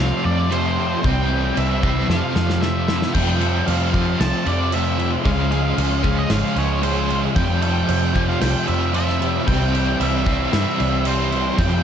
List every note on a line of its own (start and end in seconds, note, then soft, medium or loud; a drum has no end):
0.00 0.11 C2 medium
0.00 0.48 F2 medium
0.00 0.49 F2 medium
0.00 0.25 C3 loud
0.00 0.50 C3 medium
0.00 0.22 F3 loud
0.00 0.25 F3 medium
0.00 0.24 A3 medium
0.00 0.49 A3 medium
0.00 1.03 A3 medium
0.00 0.24 C4 medium
0.00 0.76 C4 medium
0.00 0.22 F4 medium
0.00 0.51 G4 medium
0.00 1.03 G4 medium
0.00 0.25 F5 loud
0.00 3.11 G5 medium
0.23 0.95 F2 medium
0.23 0.50 C3 medium
0.23 0.52 F3 medium
0.23 0.49 F3 medium
0.23 0.50 A3 medium
0.23 0.52 C4 medium
0.23 0.51 F4 medium
0.23 0.52 D5 medium
0.50 1.02 F2 medium
0.50 0.78 C3 medium
0.50 1.02 F3 medium
0.50 0.75 F3 loud
0.50 1.03 A3 medium
0.50 1.02 A3 medium
0.50 1.05 C4 medium
0.50 1.03 F4 medium
0.50 1.06 C5 loud
0.50 crash medium
0.76 1.01 C3 medium
0.76 1.02 F3 medium
0.76 1.56 C4 medium
1.02 1.51 C2 loud
1.02 1.54 C3 loud
1.02 1.83 C3 medium
1.02 1.55 E3 loud
1.02 2.08 G3 medium
1.02 1.31 G3 loud
1.02 1.56 G3 loud
1.02 2.08 C4 medium
1.02 1.57 C4 loud
1.02 1.27 C4 loud
1.02 1.58 E4 loud
1.02 2.08 B4 medium
1.02 1.59 G5 loud
1.02 kick loud
1.02 crash medium
1.28 1.56 G3 medium
1.28 1.57 C4 medium
1.28 2.09 G4 medium
1.55 2.03 C2 medium
1.55 2.07 C3 medium
1.55 2.07 E3 medium
1.55 1.84 G3 medium
1.55 1.83 C4 medium
1.55 1.80 C4 medium
1.55 2.09 E4 medium
1.55 2.09 E5 medium
1.55 crash medium
1.59 1.81 E4 medium
1.82 2.08 C3 medium
1.82 2.09 G3 medium
1.82 2.09 B3 medium
1.82 2.07 C4 medium
1.82 2.08 C4 medium
1.82 2.08 E4 medium
1.82 kick loud
2.08 2.59 F2 medium
2.08 2.61 F2 loud
2.08 2.21 F2 medium
2.08 2.62 C3 medium
2.08 2.37 C3 loud
2.08 2.34 F3 medium
2.08 2.36 F3 medium
2.08 2.34 F3 loud
2.08 3.13 A3 medium
2.08 2.35 A3 loud
2.08 2.35 C4 loud
2.08 3.13 F4 medium
2.08 2.33 F4 loud
2.08 2.61 F5 medium
2.08 snare medium
2.35 3.05 F2 medium
2.35 2.61 C3 medium
2.35 3.14 F3 medium
2.35 2.63 F3 medium
2.35 2.60 F3 medium
2.35 2.61 A3 medium
2.35 2.62 C4 medium
2.35 2.63 F4 medium
2.35 snare medium
2.50 snare medium
2.61 3.12 F2 medium
2.61 2.90 C3 medium
2.61 3.13 F3 medium
2.61 2.87 F3 medium
2.61 3.13 A3 medium
2.61 3.14 C4 medium
2.61 3.14 F4 medium
2.61 3.13 E5 medium
2.61 snare medium
2.88 3.12 F2 medium
2.88 3.14 C3 medium
2.88 3.13 F3 medium
2.88 3.14 E4 medium
2.88 snare loud
3.02 snare medium
3.14 3.93 F2 medium
3.14 3.65 F2 loud
3.14 3.61 F2 loud
3.14 3.94 C3 loud
3.14 3.42 C3 loud
3.14 3.66 F3 loud
3.14 3.40 F3 loud
3.14 4.45 G3 medium
3.14 3.66 A3 loud
3.14 3.68 C4 loud
3.14 3.69 F4 loud
3.14 3.66 G5 medium
3.14 kick loud
3.14 crash loud
3.14 crash medium
3.40 3.67 C3 medium
3.40 3.69 F3 medium
3.40 4.72 A4 medium
3.40 crash medium
3.66 4.18 F2 medium
3.66 4.14 F2 medium
3.66 3.95 C3 medium
3.66 3.95 F3 medium
3.66 3.93 F3 loud
3.66 3.94 A3 medium
3.66 3.93 C4 medium
3.66 3.92 F4 medium
3.66 4.21 F5 loud
3.66 crash medium
3.93 4.70 F2 medium
3.93 4.20 C3 medium
3.93 4.22 F3 medium
3.93 4.47 F3 medium
3.93 4.46 A3 medium
3.93 4.46 C4 medium
3.93 4.73 C4 medium
3.93 4.44 F4 medium
3.93 kick medium
3.93 crash medium
4.19 4.32 C2 medium
4.19 4.71 F2 medium
4.19 4.48 C3 medium
4.19 4.46 F3 loud
4.19 4.47 A5 loud
4.19 snare loud
4.19 crash loud
4.45 5.16 F2 medium
4.45 4.75 F3 medium
4.45 4.71 F3 medium
4.45 5.24 G3 medium
4.45 4.71 A3 medium
4.45 4.73 C4 medium
4.45 4.73 F4 medium
4.45 4.74 D5 medium
4.45 crash medium
4.49 4.73 C3 medium
4.71 5.23 F2 medium
4.71 5.00 C3 medium
4.71 5.24 F3 medium
4.71 4.98 F3 medium
4.71 5.24 A3 medium
4.71 5.25 C4 medium
4.71 8.14 C4 medium
4.71 5.26 F4 medium
4.71 5.10 E5 medium
4.71 crash medium
4.98 5.24 C3 medium
4.98 5.26 F3 medium
4.98 5.25 E4 medium
4.98 crash medium
5.24 5.72 C#2 loud
5.24 6.03 C#3 loud
5.24 5.76 C#3 loud
5.24 5.77 F3 loud
5.24 6.55 G#3 medium
5.24 5.77 G#3 medium
5.24 5.53 G#3 loud
5.24 5.77 C#4 loud
5.24 5.79 F4 medium
5.24 5.50 F5 loud
5.24 kick loud
5.24 crash medium
5.28 5.50 C#4 loud
5.51 5.77 G#3 medium
5.51 5.79 C#4 medium
5.51 6.83 G#4 medium
5.51 6.19 F5 medium
5.51 crash medium
5.77 6.24 C#2 medium
5.77 6.28 C#3 medium
5.77 6.82 F3 medium
5.77 6.05 G#3 medium
5.77 6.04 C#4 medium
5.77 6.02 C#4 medium
5.77 6.29 F4 medium
5.77 6.03 F4 medium
5.77 crash medium
6.03 6.80 C#3 medium
6.03 6.58 G#3 medium
6.03 6.30 G#3 medium
6.03 6.31 C#4 medium
6.03 6.56 C#4 medium
6.03 6.55 F4 medium
6.03 kick medium
6.03 crash medium
6.19 6.32 D#5 medium
6.29 6.42 G#1 medium
6.29 6.80 C#3 medium
6.29 6.58 G#3 loud
6.29 6.54 C#4 loud
6.29 7.08 F4 medium
6.29 6.58 F5 loud
6.29 snare loud
6.29 crash medium
6.55 7.26 C#2 medium
6.55 7.36 G#3 medium
6.55 6.82 G#3 medium
6.55 6.84 C#4 medium
6.55 6.83 C#4 medium
6.55 6.83 F4 medium
6.55 6.83 C#5 medium
6.55 crash medium
6.81 7.33 C#3 medium
6.81 7.34 F3 medium
6.81 7.34 G#3 medium
6.81 7.10 G#3 loud
6.81 7.35 C#4 medium
6.81 7.07 C#4 medium
6.81 7.35 F4 loud
6.81 7.20 C5 medium
6.81 crash medium
7.08 7.35 G#3 medium
7.08 7.34 C#4 medium
7.08 7.36 F4 medium
7.08 crash medium
7.34 8.14 F2 loud
7.34 7.86 F2 loud
7.34 7.83 F2 loud
7.34 8.14 C3 loud
7.34 7.63 C3 loud
7.34 7.86 F3 loud
7.34 7.60 F3 loud
7.34 8.67 G3 medium
7.34 7.87 A3 loud
7.34 7.89 C4 loud
7.34 7.89 F4 loud
7.34 7.61 G5 loud
7.34 kick loud
7.34 crash medium
7.61 7.88 C3 medium
7.61 7.90 F3 medium
7.61 8.94 A4 medium
7.61 8.28 G5 medium
7.61 crash medium
7.87 8.39 F2 medium
7.87 8.35 F2 medium
7.87 8.15 C3 medium
7.87 8.15 F3 medium
7.87 8.12 F3 medium
7.87 8.15 A3 medium
7.87 8.15 C4 medium
7.87 8.13 F4 medium
7.87 crash loud
8.14 8.91 F2 medium
8.14 8.41 C3 medium
8.14 8.43 F3 medium
8.14 8.68 F3 medium
8.14 8.67 A3 medium
8.14 8.93 C4 medium
8.14 8.67 C4 medium
8.14 8.65 F4 medium
8.14 kick loud
8.14 crash medium
8.29 8.41 F5 medium
8.41 8.53 C2 medium
8.41 8.92 F2 loud
8.41 8.69 C3 loud
8.41 8.66 F3 loud
8.41 8.67 G5 loud
8.41 snare loud
8.41 crash loud
8.66 9.38 F2 medium
8.66 8.94 C3 medium
8.66 8.95 F3 medium
8.66 8.92 F3 medium
8.66 9.46 G3 medium
8.66 8.93 A3 medium
8.66 8.95 C4 medium
8.66 8.95 F4 medium
8.66 8.94 E5 medium
8.66 crash medium
8.93 9.45 F2 medium
8.93 9.22 C3 medium
8.93 9.45 F3 medium
8.93 9.19 F3 medium
8.93 9.46 A3 medium
8.93 11.83 C4 medium
8.93 9.48 C4 medium
8.93 9.46 F4 medium
8.93 9.47 E5 loud
8.93 crash medium
9.09 snare soft
9.20 9.45 C3 medium
9.20 9.45 F3 medium
9.20 9.99 E4 medium
9.20 crash medium
9.46 9.94 C2 loud
9.46 9.98 C3 loud
9.46 10.26 C3 loud
9.46 9.99 E3 loud
9.46 10.77 G3 medium
9.46 9.76 G3 loud
9.46 10.00 G3 loud
9.46 10.01 C4 loud
9.46 9.72 C4 loud
9.46 10.02 E4 loud
9.46 9.99 G5 loud
9.46 kick loud
9.46 crash medium
9.73 10.01 G3 medium
9.73 10.02 C4 medium
9.73 11.05 G4 medium
9.73 crash medium
9.99 10.46 C2 medium
9.99 10.51 C3 medium
9.99 11.04 E3 medium
9.99 10.28 G3 medium
9.99 10.29 G3 medium
9.99 10.26 C4 medium
9.99 10.51 E4 medium
9.99 10.25 E4 medium
9.99 10.52 E5 medium
9.99 crash medium
10.26 11.03 C3 medium
10.26 10.79 G3 medium
10.26 10.53 G3 medium
10.26 10.55 C4 medium
10.26 10.79 C4 medium
10.26 10.77 E4 medium
10.26 kick medium
10.26 crash medium
10.52 10.64 G2 loud
10.52 11.03 C3 loud
10.52 10.80 G3 loud
10.52 10.78 C4 loud
10.52 11.30 E4 medium
10.52 11.07 E5 loud
10.52 snare loud
10.52 crash medium
10.78 11.50 C2 medium
10.78 11.56 G3 medium
10.78 11.05 G3 medium
10.78 11.07 C4 medium
10.78 11.06 C4 medium
10.78 11.06 E4 medium
10.78 crash medium
11.04 11.56 C3 medium
11.04 11.56 E3 medium
11.04 11.57 G3 medium
11.04 11.33 G3 medium
11.04 11.59 C4 medium
11.04 11.31 C4 medium
11.04 11.58 E4 medium
11.04 11.60 C5 medium
11.04 crash medium
11.31 11.58 G3 medium
11.31 11.83 C4 medium
11.31 11.58 E4 medium
11.31 crash medium
11.57 11.83 F2 loud
11.57 11.83 F2 medium
11.57 11.83 F2 loud
11.57 11.83 C3 loud
11.57 11.83 F3 loud
11.57 11.83 G3 medium
11.57 11.83 A3 loud
11.57 11.83 C4 loud
11.57 11.83 F4 loud
11.57 11.83 A4 medium
11.57 11.83 G5 loud
11.57 kick loud
11.57 crash medium